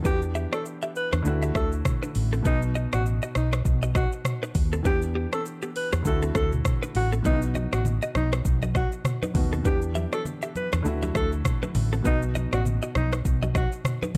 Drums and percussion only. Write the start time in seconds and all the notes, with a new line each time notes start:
0.05 kick, shaker
0.22 shaker
0.35 shaker
0.52 cross-stick, shaker
0.66 shaker
0.82 shaker
0.96 shaker
1.12 cross-stick, shaker
1.25 shaker
1.42 shaker
1.55 kick, cross-stick, shaker
1.72 shaker
1.85 kick, cross-stick, mid tom, shaker
2.03 shaker
2.15 open hi-hat, shaker
2.33 shaker
2.45 kick, shaker
2.62 shaker
2.75 shaker
2.93 cross-stick, shaker
3.06 shaker
3.22 shaker
3.35 cross-stick, shaker
3.53 cross-stick, shaker
3.65 kick, shaker
3.82 shaker
3.95 kick, cross-stick, shaker
4.12 shaker
4.25 cross-stick, mid tom, shaker
4.43 shaker
4.55 kick, open hi-hat, shaker
4.73 shaker
4.85 kick, shaker
5.02 shaker
5.33 cross-stick, shaker
5.46 shaker
5.62 shaker
5.76 open hi-hat, shaker
5.92 cross-stick, shaker
6.05 kick, shaker
6.22 shaker
6.35 kick, cross-stick, shaker
6.52 mid tom, shaker
6.65 kick, cross-stick, mid tom, shaker
6.83 shaker
6.95 open hi-hat
7.13 shaker
7.24 kick, low conga, shaker
7.42 shaker
7.55 high conga, shaker
7.73 cross-stick, shaker
7.85 low conga, shaker
8.02 shaker
8.15 cross-stick, high conga, shaker
8.32 cross-stick, shaker
8.45 kick, shaker
8.62 high conga, shaker
8.75 kick, cross-stick, high conga, shaker
8.92 shaker
9.05 cross-stick, mid tom, low conga, shaker
9.23 high conga, shaker
9.35 kick, open hi-hat, high conga, low conga, shaker
9.53 shaker
9.65 kick, low conga, shaker
9.82 shaker
9.95 high conga, shaker
10.12 cross-stick, shaker
10.25 low conga, shaker
10.42 shaker
10.56 high conga, shaker
10.72 cross-stick, shaker
10.85 shaker
11.02 high conga, shaker
11.15 kick, cross-stick, high conga, shaker
11.32 shaker
11.45 kick, cross-stick, mid tom, low conga, shaker
11.63 high conga, shaker
11.75 open hi-hat, high conga, low conga, shaker
11.93 shaker
12.04 kick, low conga, shaker
12.22 shaker
12.35 high conga, shaker
12.53 cross-stick, shaker
12.65 low conga, shaker
12.82 shaker
12.95 cross-stick, high conga, shaker
13.13 cross-stick, shaker
13.25 kick, shaker
13.42 high conga, shaker
13.55 kick, cross-stick, high conga, shaker
13.72 shaker
13.85 cross-stick, mid tom, low conga, shaker
14.02 high conga, shaker